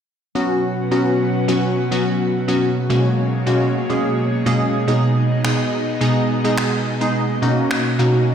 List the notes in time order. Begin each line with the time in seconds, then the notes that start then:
0.35 B2 F#3 B3 C#4 F#4 B4 F#5
0.91 F#3 B3 C#4 F#4
1.48 F#3 B3 C#4 F#4
1.91 F#3 B3 C#4 F#4
2.48 F#3 B3 C#4 F#4
2.61 A#3 G#4 C#5
2.90 B2 G#3 A#3 C#4 F#4
3.46 B2 G#3 A#3 C#4 F#4
3.89 B2 G#3 A#3 C#4 G#4
4.46 B2 G#3 A#3 C#4 G#4
4.88 B2 G#3 B3 D#4 G#4 D#5
5.44 B2 G#3 B3 D#4 G#4, finger snap
6.01 B2 G#3 B3 D#4 G#4
6.44 B2 G#3 B3 D#4 G#4
6.58 finger snap
7.01 B2 G#3 B3 D#4 G#4
7.14 B2 A#3 C#4 F#4
7.42 B2 A#3 C#4 D#4 F#4
7.71 finger snap
7.99 B2 A#3 C#4 D#4 F#4